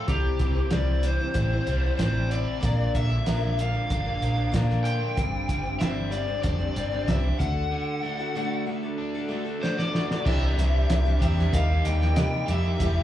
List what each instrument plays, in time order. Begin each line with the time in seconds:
Already playing: steel-string acoustic guitar A4
0.08 fingered electric bass C2, steel-string acoustic guitar C3 G3 C4 E4 C5, lead electric guitar G4, kick, closed hi-hat
0.39 fingered electric bass C2, overdriven electric guitar E3, steel-string acoustic guitar G3 C4 E4 C5, kick, closed hi-hat
0.53 steel-string acoustic guitar C4 E4 C5
0.71 fingered electric bass C2, steel-string acoustic guitar C3 G3 C4 E4 C5, lead electric guitar D5, snare, closed hi-hat
1.02 overdriven electric guitar E3, steel-string acoustic guitar G3 C4 E4, lead electric guitar C5, closed hi-hat
1.06 steel-string acoustic guitar C5
1.19 steel-string acoustic guitar C4 E4 C5
1.34 fingered electric bass A1, overdriven electric guitar C4, kick, closed hi-hat
1.52 steel-string acoustic guitar C4 E4 C5
1.67 fingered electric bass C2, steel-string acoustic guitar G3 C4 E4, closed hi-hat
1.72 steel-string acoustic guitar C5
1.83 steel-string acoustic guitar C4 E4 C5
1.97 fingered electric bass A1, steel-string acoustic guitar C3 G3 C4 E4 C5, lead electric guitar C5, kick, snare, closed hi-hat
2.31 overdriven electric guitar E4, lead electric guitar D5, closed hi-hat
2.61 fingered electric bass A#1, steel-string acoustic guitar A#2 D3 F3 A#3 D4 A#4, kick, closed hi-hat
2.93 fingered electric bass A#1, overdriven electric guitar D3, steel-string acoustic guitar F3 A#3 D4 A#4, lead electric guitar E5, kick, closed hi-hat
3.09 steel-string acoustic guitar F3 A#3 D4 A#4
3.26 fingered electric bass A#1, steel-string acoustic guitar A#2 D3 F3 A#3 D4 A#4, snare, closed hi-hat
3.57 overdriven electric guitar D3, steel-string acoustic guitar F3 A#3 D4 A#4, lead electric guitar F5, closed hi-hat
3.72 steel-string acoustic guitar F3 A#3 D4 A#4
3.90 fingered electric bass G1, overdriven electric guitar D4, kick, closed hi-hat
4.05 steel-string acoustic guitar F3 A#3 D4 A#4
4.19 fingered electric bass A#1, steel-string acoustic guitar F3 A#3 D4 A#4, closed hi-hat
4.35 steel-string acoustic guitar F3 A#3 D4 A#4
4.52 steel-string acoustic guitar A#2 D3 F3 A#3 D4 A#4, fingered electric bass A#2, kick, snare, closed hi-hat
4.70 snare
4.84 overdriven electric guitar F4, lead electric guitar G5, closed hi-hat
5.16 fingered electric bass G1, steel-string acoustic guitar G2 D3 G3 C4 D4 C5, kick, closed hi-hat
5.48 fingered electric bass G1, overdriven electric guitar D3, steel-string acoustic guitar G3 C4 D4 C5, kick, closed hi-hat
5.63 steel-string acoustic guitar G3 C4 D4 C5
5.79 fingered electric bass G1, steel-string acoustic guitar G2 D3 G3 C4 D4 C5, lead electric guitar E5, snare, closed hi-hat
6.11 steel-string acoustic guitar G3 C4 D4 C5, lead electric guitar D5, closed hi-hat
6.27 steel-string acoustic guitar G3 C4 D4 C5
6.43 fingered electric bass F1, overdriven electric guitar D4, lead electric guitar D5, kick, closed hi-hat
6.59 steel-string acoustic guitar G3 C4 D4 C5
6.76 fingered electric bass G1, steel-string acoustic guitar G3 C4 D4 C5, closed hi-hat
6.91 steel-string acoustic guitar G3 C4 D4 C5
7.07 fingered electric bass C2, steel-string acoustic guitar G2 D3 G3 C4 D4 C5, lead electric guitar E5, kick, snare, closed hi-hat
7.23 steel-string acoustic guitar G3 C4 D4 C5
7.39 fingered electric bass D2, steel-string acoustic guitar D3 A3 D4 F#4 A4, lead electric guitar F#5, kick, closed hi-hat
7.71 overdriven electric guitar D3
8.04 steel-string acoustic guitar A3 D4 F#4 A4
8.19 steel-string acoustic guitar D4 F#4 A4
8.35 steel-string acoustic guitar D3 A3 D4 F#4 A4
8.66 overdriven electric guitar D3, steel-string acoustic guitar A3 D4 F#4 A4
8.83 steel-string acoustic guitar D4 F#4 A4
8.98 overdriven electric guitar D4
9.15 steel-string acoustic guitar D4 F#4 A4
9.29 steel-string acoustic guitar A3 D4 F#4 A4
9.45 steel-string acoustic guitar D4 F#4 A4
9.62 steel-string acoustic guitar D3 A3 D4 F#4 A4, lead electric guitar C5, snare
9.78 steel-string acoustic guitar D4 F#4 A4, lead electric guitar D5, snare
9.93 overdriven electric guitar F#4, snare
10.11 snare
10.25 fingered electric bass C2, steel-string acoustic guitar C3 E3 G3 C4 D4 G4, grand piano E4 C5 D5, lead electric guitar E5, kick, crash
10.57 fingered electric bass C2, steel-string acoustic guitar G3 C4 D4 G4, snare, closed hi-hat
10.89 fingered electric bass C2, grand piano E4 C5 E5, snare, closed hi-hat
11.05 steel-string acoustic guitar C3 E3 G3 C4 D4 G4
11.19 fingered electric bass E2, overdriven electric guitar C3 E3 G4, steel-string acoustic guitar G3 C4 D4, kick, closed hi-hat
11.23 steel-string acoustic guitar G4, lead electric guitar E5
11.37 steel-string acoustic guitar G3 C4 D4 G4, snare
11.51 fingered electric bass D#2, steel-string acoustic guitar D#3 G3 A#3 D#4 G4, grand piano G4 A#4 D#5, kick, closed hi-hat
11.55 lead electric guitar F5
11.71 steel-string acoustic guitar A#3 D#4 G4
11.83 fingered electric bass D#2, steel-string acoustic guitar G3, grand piano G4 A#4 D#5, closed hi-hat
11.87 steel-string acoustic guitar A#3 D#4 G4, lead electric guitar G5
12.02 snare
12.12 grand piano G4 A#4 D#5, closed hi-hat
12.16 fingered electric bass C3, steel-string acoustic guitar D#3 G3 A#3 D#4 G4, snare
12.46 fingered electric bass F2, overdriven electric guitar D#3 D#4 G4, steel-string acoustic guitar G3, closed hi-hat
12.51 steel-string acoustic guitar A#3 D#4 G4, lead electric guitar E5
12.64 steel-string acoustic guitar A#3 D#4 G4
12.77 fingered electric bass E1, overdriven electric guitar E2 B2, steel-string acoustic guitar E3, grand piano G4 B4 E5, kick, closed hi-hat
12.81 steel-string acoustic guitar G3 B3 E4 G4